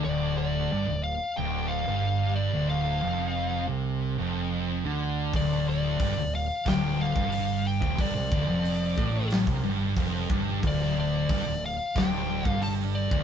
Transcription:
0.04 D1 D2 D5
0.38 D5
0.71 G1 G2
0.88 D1 D2
1.04 F5
1.36 D1 D2 G5
1.68 F5
1.87 G1 G2
2.36 D5
2.53 D1 D2
2.69 F5
3.03 F1 F2
3.69 C2 C3
4.19 F1 F2
4.85 D2 D3
5.34 D1 D2 D5, kick, open hi-hat
5.69 D5
6.00 G1 G2, kick, open hi-hat
6.17 D1 D2
6.35 F5
6.66 D1 D2 G5, kick, snare, open hi-hat
7.01 F5
7.16 G1 G2, kick
7.32 open hi-hat
7.67 G5
7.82 D1 D2, kick
7.98 G1 G2 D5, kick, open hi-hat
8.15 C2 C3, snare
8.32 D1 D2, kick
8.47 F1 F2
8.65 open hi-hat
8.98 A1 A2, kick
9.30 snare, open hi-hat
9.47 C2 C3, kick
9.64 G1 G2
9.96 F1 F2, kick, open hi-hat
10.30 G1 G2, kick
10.63 D1 D2, kick, open hi-hat
10.67 D5
10.82 snare
11.00 D5
11.29 G1 G2, kick, open hi-hat
11.47 D1 D2
11.66 F5
11.96 D1 D2 G5, kick, snare, open hi-hat
12.45 G1 G2 F5, kick
12.62 A5, open hi-hat
12.95 D5
13.11 D1 D2, kick

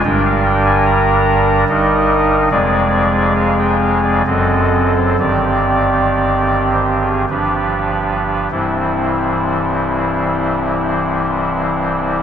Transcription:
0.05 G1 G2 G3 D4 A#4 G5
0.25 F5
0.45 G5
0.65 G#5
0.86 A#5
1.68 G1 G2 G3 D#4 A#4 D#5
2.51 F1 F2 G#3 C4 G#4 D5
3.36 F5
3.58 G5
3.81 F5
4.03 D5
4.26 F#1 F#2 F#3 C4 A4 D#5
4.96 C5
5.19 G1 G2 D#3 C4 G4 D5
6.73 C5
7.01 G#4
7.30 G1 G2 F3 D4 G4 B4
8.51 C1 C2 G2 E3 G3 C4 E4 C5

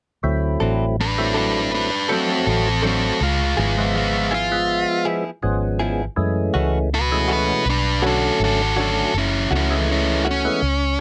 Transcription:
0.23 D2 F#3 A3 C4 E4
0.60 A1 F#3 C4 D4 A4
1.01 D4 B4
1.18 F#3 A3 C4 E4
1.34 F#3 C4 D4 A4 B4
1.74 D4 B4
2.09 F#3 A3 C4 D4 F#4 A4
2.47 A1 C4 A4
2.82 F#3 A3 C4 D4 F#4 A4
2.86 C4 A4
3.21 C#2 G#3 F4
3.57 G#1 F3 G#3 B3 E4 F4 G#4
3.78 F3 G#3 B3 E5
3.96 G#3 F4
4.31 F3 B3 E4 F4 G#4
4.52 F3 G#3 B3 E5
5.05 F3 B3 E4 G#4
5.43 G#1 F3 G#3 B3 C#4
5.79 F3 B3 E4 G#4
6.16 F#2 E3 G#3 A3 C#4
6.54 C#2 E3 A3 C#4 F#4
6.94 F#4 B4
7.12 E3 G#3 A3 C#4
7.28 E3 A3 C#4 F#4
7.33 B4
7.66 B1 D4
7.70 B4
8.02 D3 F#3 A3 C#4 D4 F#4
8.06 F#4 A4
8.40 G#1
8.44 F#4 A4
8.76 D3 F#3 A3 C#4 D4 F#4
8.81 A4
9.14 F#1 C#4
9.18 E4
9.51 C#2 E3 A3 C#4 F#4
9.55 C#4 E4
9.70 E3 G#3 A3 C#4
9.91 C#4 E4
10.25 E3 A3 C#4 F#4
10.31 C#4
10.45 E3 G#3 A3 B3
10.62 C#2

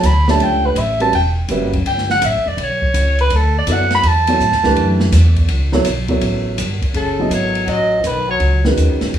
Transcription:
0.03 D2 B5, hi-hat pedal, ride
0.28 A3 D4 G4 C#5 E5 A5, snare
0.39 C#2 G5, ride
0.66 B4
0.75 A1 E5, hi-hat pedal, ride
1.00 G3 C#4 F#4 B4 E5 A5, ride
1.12 E1 G5, ride
1.48 F#1 G3 C#4 F#4 B4 E5, hi-hat pedal, ride
1.73 kick, ride
1.85 G1 G5, ride
1.98 snare
2.10 F#5, snare
2.21 A1 E5, hi-hat pedal, ride
2.33 G1
2.46 E1 D5
2.57 B1, ride
2.63 C#5
2.82 kick
2.94 C#2, hi-hat pedal, ride
3.19 B4, ride
3.30 D2, ride
3.36 A4
3.58 D5
3.67 F#2 F#3 B3 E4 A4 D5, hi-hat pedal, ride
3.72 F#5
3.90 snare, ride
3.95 B5
4.03 E2, ride
4.08 A5
4.27 F#3 B3 E4 A4 C#5, ride
4.40 A2, hi-hat pedal
4.52 E2, snare
4.64 C#2 E3 A3 D4 G4 B4, snare
4.76 F#2, ride
5.00 snare
5.12 E2, snare, hi-hat pedal, ride
5.36 kick, ride
5.48 C#2, ride
5.72 F#3 B3 E4 A4 C#5, snare
5.85 B1, hi-hat pedal, ride
6.08 F#3 B3 E4 A4 C#5, kick, ride
6.21 A1, ride
6.58 G1, hi-hat pedal, ride
6.82 muted upright bass stroke, kick, ride
6.94 F#1 C#3 A4, ride
7.19 F#3 B3 E4 A4 D#5
7.30 G#1 F#3 C#5, hi-hat pedal, ride
7.55 ride
7.66 A1 F#3 D#5, ride
8.04 B1 D#3 B4, hi-hat pedal, ride
8.28 F#3 C#5
8.40 C#2, ride
8.65 D#3 G#3 C#4 F#4 B4, snare
8.77 D#2, hi-hat pedal, ride
8.89 C#2
9.01 A1, snare, ride
9.13 F#2, ride

